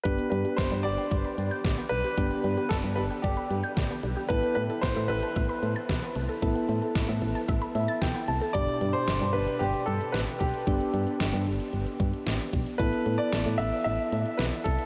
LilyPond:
<<
  \new Staff \with { instrumentName = "Grand piano" } { \time 4/4 \key g \major \tempo 4 = 113 b'8 b'8 c''8 d''4. r8 b'8~ | b'4 a'8 b'8 g'4. r8 | b'8 b'8 c''8 b'2~ b'8~ | b'2. r4 |
d''8. c''8. b'8 g'8 a'8 b'8 g'8~ | g'4 r2. | b'8. d''8. e''8 e''4 b'8 a'8 | }
  \new Staff \with { instrumentName = "Synth arpeggio sound" } { \time 4/4 \key g \major d16 b16 g16 g'16 b16 d''16 g'16 g''16 d''16 b''16 r16 g'''16 d16 b16 g16 g'16 | d16 b16 g16 g'16 b16 d''16 g'16 g''16 d''16 b''16 r16 g'''16 d16 b16 g16 g'16 | e16 b16 a16 a'16 b16 e''16 a'16 a''16 e''16 b''16 r16 a'''16 e16 b16 a16 a'16 | e16 b16 a16 a'16 b16 e''16 a'16 a''16 e''16 b''16 r16 a'''16 e16 b16 a16 a'16 |
r1 | r1 | r1 | }
  \new Staff \with { instrumentName = "Synth keys" } { \time 4/4 \key g \major << { r1 | r1 | r1 | r2 r8 e''8 g''8 a''8 |
r1 | r1 | r1 | } \\ { <b d' g'>1 | <b d' g'>1 | <b e' a'>1 | <b e' a'>1 |
<b, d' g'>1 | <b d' g'>1 | <b e' a'>1 | } >> }
  \new Staff \with { instrumentName = "FM bass" } { \clef bass \time 4/4 \key g \major g,,16 r16 g,16 r16 g,,16 g,16 g,,16 r16 g,,16 r16 g,16 r16 a,,16 r16 b,,16 r16 | g,,16 r16 g,16 r16 g,,16 g,16 g,,16 r16 g,,16 r16 g,16 r16 a,,16 r16 b,,16 r16 | a,,16 r16 a,16 r16 a,,16 a,16 a,,16 r16 a,,16 r16 a,16 r16 b,,16 r16 c,16 r16 | a,,16 r16 a,16 r16 a,,16 a,16 a,,16 r16 a,,16 r16 a,16 r16 b,,16 r16 c,16 r16 |
g,,16 r16 g,16 r16 g,,16 g,16 g,,16 r16 g,,16 r16 g,16 r16 a,,16 r16 b,,16 r16 | g,,16 r16 g,16 r16 g,,16 g,16 g,,16 r16 g,,16 r16 g,16 r16 a,,16 r16 b,,16 r16 | a,,16 r16 a,16 r16 a,,16 a,16 a,,16 r16 a,,16 r16 a,16 r16 b,,16 r16 c,16 r16 | }
  \new DrumStaff \with { instrumentName = "Drums" } \drummode { \time 4/4 <hh bd>16 hh16 hh16 hh16 <hh bd sn>16 hh16 hh16 hh16 <hh bd>16 hh16 hh16 hh16 <hh bd sn>16 hh16 hh16 hh16 | <hh bd>16 hh16 hh16 hh16 <hh bd sn>16 hh16 hh16 hh16 <hh bd>16 hh16 hh16 hh16 <hh bd sn>16 hh16 hh16 hh16 | <hh bd>16 hh16 hh16 hh16 <hh bd sn>16 hh16 hh16 hh16 <hh bd>16 hh16 hh16 hh16 <hh bd sn>16 hh16 hh16 hh16 | <hh bd>16 hh16 hh16 hh16 <hh bd sn>16 hh16 hh16 hh16 <hh bd>16 hh16 hh16 hh16 <hh bd sn>16 hh16 hh16 hh16 |
<hh bd>16 hh16 hh16 hh16 <hh sn>16 hh16 hh16 hh16 hh16 hh16 hh16 hh16 <hh sn>16 hh16 <hh bd>16 hh16 | <hh bd>16 hh16 hh16 hh16 <hh sn>16 hh16 hh16 hh16 hh16 hh16 <hh bd>16 hh16 <hh sn>16 hh16 <hh bd>16 hh16 | <hh bd>16 hh16 hh16 hh16 <hh sn>16 hh16 hh16 hh16 hh16 hh16 hh16 hh16 <hh sn>16 hh16 <hh bd>16 hh16 | }
>>